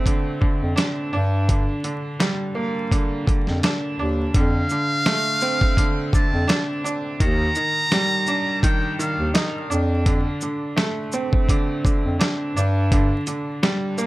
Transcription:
Already playing: D3 A3 C4 D4
0.06 D3, kick, closed hi-hat
0.41 D3, kick
0.62 F2
0.76 D4, snare, closed hi-hat
1.13 G2 D4
1.49 D3, kick, closed hi-hat
1.84 D3, closed hi-hat
2.19 G3, snare, closed hi-hat
2.55 A#3
2.91 D3, kick, closed hi-hat
3.26 D3, kick, closed hi-hat
3.47 F2, snare
3.63 D4, snare, closed hi-hat
3.99 D#2 D4
4.34 F2 D3 F5, kick, closed hi-hat
4.70 D3, shaker
5.06 A3, snare, closed hi-hat
5.41 C4, shaker
5.61 kick
5.77 D3, kick, closed hi-hat
6.13 D3 A5, kick, shaker
6.33 F2
6.47 D4, snare, closed hi-hat
6.84 D4, shaker
7.20 D#2 D#3 A#5, kick, closed hi-hat
7.55 D#3, shaker
7.92 G3, snare, closed hi-hat
8.27 D4, shaker
8.63 D#3 G5, kick, closed hi-hat
8.99 D#3 F5, shaker
9.19 D#2
9.34 D#4, snare, closed hi-hat
9.70 F2 D4, shaker
10.06 D3, kick, closed hi-hat
10.41 D3, shaker
10.77 A3, snare, closed hi-hat
11.12 C4, shaker
11.33 kick
11.49 D3, kick, closed hi-hat
11.84 D3, kick, shaker
12.05 F2
12.19 D4, snare, closed hi-hat
12.56 G2 D4, shaker
12.92 D3, kick, closed hi-hat
13.27 D3, closed hi-hat, shaker
13.63 G3, snare, closed hi-hat
13.98 A#3, shaker

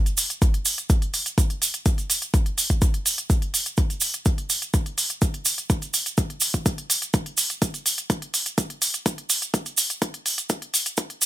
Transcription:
0.06 closed hi-hat, cabasa
0.17 open hi-hat, cabasa
0.30 closed hi-hat, cabasa
0.42 kick, closed hi-hat, cabasa
0.54 closed hi-hat
0.65 open hi-hat, cabasa
0.78 closed hi-hat, cabasa
0.90 kick, closed hi-hat, cabasa
1.02 closed hi-hat
1.14 open hi-hat, cabasa
1.26 closed hi-hat, cabasa
1.38 kick, closed hi-hat, cabasa
1.50 closed hi-hat
1.62 open hi-hat, cabasa
1.74 closed hi-hat, cabasa
1.86 kick, closed hi-hat, cabasa
1.98 closed hi-hat, cabasa
2.10 open hi-hat, cabasa
2.22 closed hi-hat, cabasa
2.34 kick, closed hi-hat, cabasa
2.46 closed hi-hat
2.58 open hi-hat, cabasa
2.70 kick, closed hi-hat, cabasa
2.82 kick, closed hi-hat, cabasa
2.94 closed hi-hat
3.06 open hi-hat, cabasa
3.18 closed hi-hat, cabasa
3.30 kick, closed hi-hat, cabasa
3.42 closed hi-hat
3.54 open hi-hat, cabasa
3.66 closed hi-hat, cabasa
3.77 kick, closed hi-hat, cabasa
3.90 closed hi-hat, cabasa
4.01 open hi-hat, cabasa
4.13 closed hi-hat, cabasa
4.25 kick, closed hi-hat, cabasa
4.38 closed hi-hat
4.50 open hi-hat, cabasa
4.62 closed hi-hat, cabasa
4.74 kick, closed hi-hat, cabasa
4.86 closed hi-hat
4.98 open hi-hat, cabasa
5.10 closed hi-hat, cabasa
5.21 kick, closed hi-hat, cabasa
5.34 closed hi-hat
5.45 open hi-hat, cabasa
5.58 closed hi-hat, cabasa
5.70 kick, closed hi-hat, cabasa
5.82 closed hi-hat, cabasa
5.94 open hi-hat, cabasa
6.06 closed hi-hat, cabasa
6.17 kick, closed hi-hat, cabasa
6.30 closed hi-hat
6.40 open hi-hat, cabasa
6.54 kick, closed hi-hat, cabasa
6.66 kick, closed hi-hat, cabasa
6.78 closed hi-hat
6.90 open hi-hat, cabasa
7.02 closed hi-hat, cabasa
7.13 kick, closed hi-hat, cabasa
7.26 closed hi-hat
7.37 open hi-hat, cabasa
7.50 closed hi-hat, cabasa
7.62 kick, closed hi-hat, cabasa
7.74 closed hi-hat, cabasa
7.86 open hi-hat, cabasa
7.98 closed hi-hat, cabasa
8.10 kick, closed hi-hat, cabasa
8.22 closed hi-hat
8.34 open hi-hat, cabasa
8.46 closed hi-hat, cabasa
8.58 kick, closed hi-hat, cabasa
8.70 closed hi-hat
8.82 open hi-hat, cabasa
8.94 closed hi-hat, cabasa
9.06 kick, closed hi-hat, cabasa
9.18 closed hi-hat
9.30 open hi-hat, cabasa
9.42 closed hi-hat, cabasa
9.54 kick, closed hi-hat, cabasa
9.66 closed hi-hat, cabasa
9.77 open hi-hat, cabasa
9.90 closed hi-hat, cabasa
10.02 kick, closed hi-hat, cabasa
10.14 closed hi-hat
10.26 open hi-hat, cabasa
10.38 closed hi-hat, cabasa
10.49 kick, closed hi-hat, cabasa
10.62 closed hi-hat
10.74 open hi-hat, cabasa
10.86 closed hi-hat, cabasa
10.97 kick, closed hi-hat, cabasa
11.10 closed hi-hat
11.22 open hi-hat, cabasa

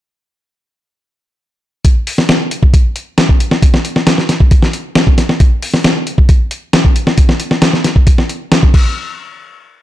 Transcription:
1.85 kick, closed hi-hat
2.07 open hi-hat
2.18 snare
2.29 snare, closed hi-hat
2.51 closed hi-hat
2.63 kick
2.74 kick, closed hi-hat
2.96 closed hi-hat
3.18 snare, closed hi-hat
3.29 kick
3.40 closed hi-hat
3.51 snare
3.62 kick, closed hi-hat
3.74 snare
3.85 closed hi-hat
3.96 snare
4.07 snare, closed hi-hat
4.18 snare
4.29 snare, closed hi-hat
4.40 kick
4.51 kick, closed hi-hat
4.62 snare
4.73 closed hi-hat
4.95 snare, closed hi-hat
5.07 kick
5.18 snare, closed hi-hat
5.29 snare
5.40 kick, closed hi-hat
5.62 open hi-hat
5.74 snare
5.84 snare, closed hi-hat
6.07 closed hi-hat
6.18 kick
6.29 kick, closed hi-hat
6.51 closed hi-hat
6.73 snare, closed hi-hat
6.85 kick
6.96 closed hi-hat
7.07 snare
7.18 kick, closed hi-hat
7.29 snare
7.40 closed hi-hat
7.51 snare
7.62 snare, closed hi-hat
7.73 snare
7.84 snare, closed hi-hat
7.96 kick
8.07 kick, closed hi-hat
8.18 snare
8.29 closed hi-hat
8.52 snare, closed hi-hat
8.63 kick
8.74 kick, crash

